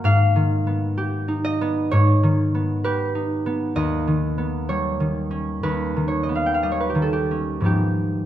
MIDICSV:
0, 0, Header, 1, 2, 480
1, 0, Start_track
1, 0, Tempo, 943396
1, 19, Time_signature, 4, 2, 24, 8
1, 979, Tempo, 923077
1, 2899, Tempo, 980392
1, 3379, Tempo, 1067616
1, 4125, End_track
2, 0, Start_track
2, 0, Title_t, "Harp"
2, 0, Program_c, 0, 46
2, 0, Note_on_c, 0, 71, 88
2, 0, Note_on_c, 0, 75, 91
2, 20, Note_on_c, 0, 44, 76
2, 24, Note_on_c, 0, 77, 98
2, 58, Note_off_c, 0, 71, 0
2, 182, Note_on_c, 0, 51, 54
2, 340, Note_on_c, 0, 59, 47
2, 496, Note_on_c, 0, 67, 62
2, 652, Note_on_c, 0, 63, 58
2, 729, Note_off_c, 0, 75, 0
2, 735, Note_on_c, 0, 75, 97
2, 815, Note_off_c, 0, 59, 0
2, 821, Note_on_c, 0, 59, 66
2, 974, Note_off_c, 0, 44, 0
2, 974, Note_on_c, 0, 73, 95
2, 980, Note_on_c, 0, 44, 66
2, 1133, Note_off_c, 0, 51, 0
2, 1140, Note_on_c, 0, 51, 56
2, 1246, Note_off_c, 0, 77, 0
2, 1296, Note_off_c, 0, 59, 0
2, 1302, Note_on_c, 0, 59, 52
2, 1455, Note_off_c, 0, 67, 0
2, 1457, Note_on_c, 0, 71, 84
2, 1461, Note_on_c, 0, 67, 66
2, 1610, Note_off_c, 0, 63, 0
2, 1616, Note_on_c, 0, 63, 55
2, 1772, Note_off_c, 0, 59, 0
2, 1778, Note_on_c, 0, 59, 58
2, 1925, Note_off_c, 0, 75, 0
2, 1932, Note_on_c, 0, 39, 61
2, 1932, Note_on_c, 0, 75, 87
2, 1950, Note_off_c, 0, 51, 0
2, 1951, Note_off_c, 0, 44, 0
2, 2097, Note_on_c, 0, 51, 49
2, 2249, Note_off_c, 0, 59, 0
2, 2255, Note_on_c, 0, 59, 51
2, 2411, Note_off_c, 0, 73, 0
2, 2417, Note_on_c, 0, 73, 79
2, 2419, Note_on_c, 0, 55, 54
2, 2573, Note_off_c, 0, 51, 0
2, 2579, Note_on_c, 0, 51, 51
2, 2738, Note_on_c, 0, 61, 53
2, 2900, Note_off_c, 0, 71, 0
2, 2901, Note_off_c, 0, 39, 0
2, 2906, Note_on_c, 0, 39, 58
2, 2907, Note_on_c, 0, 71, 81
2, 3064, Note_off_c, 0, 51, 0
2, 3069, Note_on_c, 0, 51, 45
2, 3119, Note_off_c, 0, 73, 0
2, 3125, Note_on_c, 0, 73, 64
2, 3195, Note_off_c, 0, 75, 0
2, 3201, Note_on_c, 0, 75, 54
2, 3222, Note_off_c, 0, 59, 0
2, 3228, Note_on_c, 0, 59, 46
2, 3248, Note_off_c, 0, 73, 0
2, 3260, Note_on_c, 0, 77, 54
2, 3297, Note_off_c, 0, 75, 0
2, 3313, Note_on_c, 0, 79, 65
2, 3340, Note_off_c, 0, 77, 0
2, 3352, Note_on_c, 0, 77, 58
2, 3379, Note_off_c, 0, 79, 0
2, 3387, Note_off_c, 0, 55, 0
2, 3393, Note_on_c, 0, 55, 50
2, 3394, Note_on_c, 0, 75, 58
2, 3412, Note_off_c, 0, 77, 0
2, 3433, Note_on_c, 0, 73, 58
2, 3448, Note_off_c, 0, 67, 0
2, 3451, Note_off_c, 0, 75, 0
2, 3466, Note_off_c, 0, 71, 0
2, 3472, Note_on_c, 0, 71, 59
2, 3496, Note_off_c, 0, 73, 0
2, 3513, Note_on_c, 0, 67, 47
2, 3532, Note_off_c, 0, 51, 0
2, 3538, Note_on_c, 0, 51, 47
2, 3545, Note_off_c, 0, 71, 0
2, 3569, Note_on_c, 0, 69, 53
2, 3583, Note_off_c, 0, 63, 0
2, 3597, Note_off_c, 0, 67, 0
2, 3618, Note_on_c, 0, 67, 60
2, 3655, Note_off_c, 0, 69, 0
2, 3694, Note_off_c, 0, 61, 0
2, 3699, Note_on_c, 0, 61, 44
2, 3832, Note_on_c, 0, 44, 48
2, 3837, Note_on_c, 0, 53, 39
2, 3840, Note_off_c, 0, 59, 0
2, 3846, Note_on_c, 0, 59, 38
2, 3851, Note_off_c, 0, 67, 0
2, 3851, Note_on_c, 0, 63, 37
2, 3856, Note_on_c, 0, 67, 63
2, 3875, Note_off_c, 0, 51, 0
2, 3876, Note_off_c, 0, 39, 0
2, 3877, Note_off_c, 0, 61, 0
2, 3879, Note_off_c, 0, 55, 0
2, 4125, Note_off_c, 0, 44, 0
2, 4125, Note_off_c, 0, 53, 0
2, 4125, Note_off_c, 0, 59, 0
2, 4125, Note_off_c, 0, 63, 0
2, 4125, Note_off_c, 0, 67, 0
2, 4125, End_track
0, 0, End_of_file